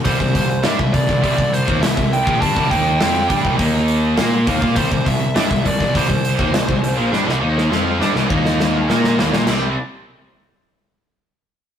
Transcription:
0.05 C2 C3 G3 C5, kick, open hi-hat
0.20 C2 C3 G3, kick
0.34 C2 C3 G3 C5, kick, open hi-hat
0.63 G2 G3 D4 E5, snare, open hi-hat
0.77 C2 C3 G3, kick
0.93 C2 C3 G3 D5, kick, open hi-hat
1.08 C2 C3 G3, kick, snare
1.23 C2 C3 G3 D5, kick, open hi-hat
1.38 C2 C3 G3, kick
1.53 C5, open hi-hat
1.67 D#2 D#3 A#3, kick
1.81 C2 C3 G3 E5, snare, open hi-hat
1.96 C2 C3 G3, kick
2.13 G5, open hi-hat
2.25 A#1 A#2 F3, kick
2.40 G2 G3 D4 A5, kick, open hi-hat
2.54 C2 C3 G3, kick
2.69 D#2 D#3 A#3 D#4 G5, kick, open hi-hat
2.98 F2 F3 C4 F4, snare, open hi-hat
3.28 G2 G3 D4, kick, open hi-hat
3.42 C2 C3 G3, kick
3.56 D#2 D#3 A#3 D#4, kick, open hi-hat
3.88 open hi-hat
4.16 A#2 A#3 F4 A#4, snare, open hi-hat
4.46 D#2 D#3 A#3, kick, open hi-hat
4.60 A#2 A#3 F4, kick
4.75 C2 C3 G3 C5, kick, open hi-hat
4.90 C2 C3 G3, kick
5.05 C2 C3 G3 E5, kick, open hi-hat
5.35 G2 G3 D4 E5, snare, open hi-hat
5.50 C2 C3 G3, kick
5.65 C2 C3 G3 D5, kick, open hi-hat
5.80 C2 C3 G3, kick, snare
5.94 C2 C3 G3 C5, kick, open hi-hat
6.08 C2 C3 G3, kick
6.25 open hi-hat
6.39 D#2 D#3 A#3, kick
6.52 C2 C3 G3, snare, open hi-hat
6.68 C2 C3 G3, kick
6.84 open hi-hat
6.96 A#1 A#2 F3
7.10 G2 G3 D4, snare
7.25 C2 C3 G3
7.29 snare
7.40 D#2 D#3 A#3 D#4
7.58 snare
7.70 F2 F3 C4 F4, snare
7.99 G2 G3 D4, snare
8.14 C2 C3 G3, snare
8.29 D#2 D#3 A#3 D#4, kick
8.45 snare
8.60 snare
8.89 A#2 A#3 F4 A#4, snare
9.04 snare
9.18 D#2 D#3 A#3, snare
9.33 A#2 A#3 F4, snare
9.47 C2 C3 G3 C4, snare, crash

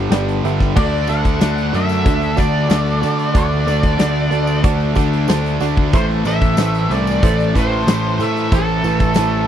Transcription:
Already playing: D3 G3
0.11 G1 G2 D3 G3 G4 B4 D5, snare, closed hi-hat
0.29 closed hi-hat
0.43 G1 G2 D3 G3 G4 B4 E5, closed hi-hat
0.60 kick, snare
0.76 D2 D3 A3 D4 F#4 A4 D5, kick, crash, tambourine
0.93 snare
1.07 D2 D3 A3 D4 F#4 A4 D5 F#5, closed hi-hat, tambourine
1.25 kick, closed hi-hat
1.40 D2 D3 A3 D4 F#4 A4 D5, snare, closed hi-hat, tambourine
1.58 closed hi-hat, tambourine
1.72 F#2 D3 A3 D4 F#4 A4 D5 E5, closed hi-hat, tambourine
1.89 closed hi-hat, tambourine
2.05 D2 D3 A3 D4 F#4 A4 D5, kick, closed hi-hat
2.21 closed hi-hat, tambourine
2.36 D2 D3 A3 D4 F#4 A4 D5, kick, closed hi-hat, tambourine
2.68 D2 D3 A3 D4 F#4 A4 D5, snare, closed hi-hat, tambourine
2.87 tambourine
3.01 D3 A3 D4 F#4 A4 D5, closed hi-hat, tambourine
3.19 closed hi-hat
3.34 D2 D3 A3 D4 F#4 A4 D5, kick, closed hi-hat, tambourine
3.67 D2 D3 A3 D4 F#4 A4 D5, closed hi-hat, tambourine
3.83 kick, closed hi-hat
3.99 D2 D3 A3 D4 F#4 A4 D5, snare, closed hi-hat, tambourine
4.15 tambourine
4.31 D2 D3 A3 D4 F#4 A4 D5, closed hi-hat, tambourine
4.47 tambourine
4.64 D2 D3 A3 D4 F#4 A4 D5, kick, closed hi-hat
4.80 tambourine
4.95 D2 D3 A3 D4 F#4 A4 D5, kick, closed hi-hat, tambourine
5.13 closed hi-hat
5.28 D2 D3 A3 D4 F#4 A4 C5, snare, closed hi-hat, tambourine
5.44 closed hi-hat, tambourine
5.60 D2 D3 A3 D4 F#4 A4 D5, closed hi-hat, tambourine
5.77 kick
5.92 A1 A2 E3 A3 E4 A4 C5, kick, closed hi-hat, tambourine
6.09 snare
6.25 A1 A2 E3 A3 E4 A4 C5 E5, closed hi-hat, tambourine
6.41 kick, closed hi-hat
6.57 A1 A2 E3 A3 E4 A4 C5, snare, closed hi-hat, tambourine
6.74 closed hi-hat, tambourine
6.89 C2 A2 E3 A3 E4 A4 C5 D5, closed hi-hat, tambourine
7.07 closed hi-hat, tambourine
7.23 A1 A2 E3 A3 E4 A4 C5, kick, closed hi-hat
7.39 closed hi-hat, tambourine
7.55 A1 A2 E3 A3 E4 A4 B4 C5, kick, closed hi-hat, tambourine
7.87 A1 A2 E3 A3 E4 A4 C5, snare, closed hi-hat, tambourine
8.04 tambourine
8.19 A2 E3 A3 E4 A4 C5 E5, closed hi-hat, tambourine
8.37 closed hi-hat
8.52 A1 A2 E3 A3 E4 A4 C5, kick, closed hi-hat, tambourine
8.68 tambourine
8.84 A1 A2 E3 A3 E4 A4 B4, closed hi-hat, tambourine
9.00 kick, closed hi-hat, tambourine
9.14 A1 A2 E3 A3 E4 A4 C5, snare, closed hi-hat, tambourine

